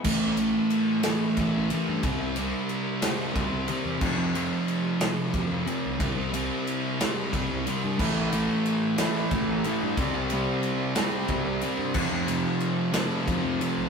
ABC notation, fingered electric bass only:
X:1
M:6/8
L:1/16
Q:3/8=61
K:Am
V:1 name="Fingered electric bass" clef=bass
A,,, A,,,2 z4 z A,,, A,,, z G,, | C,, C,,2 z4 z C,, C,, z E,, | F,, F,,2 z4 z F,, F,, z C,, | C,, C,,2 z4 z C,, C,, z G,, |
A,,, A,,,2 z4 z A,,, A,,, z G,, | C,, C,,2 z4 z C,, C,, z G,, | F,, F,,2 z4 z F,, F,, z B,,, |]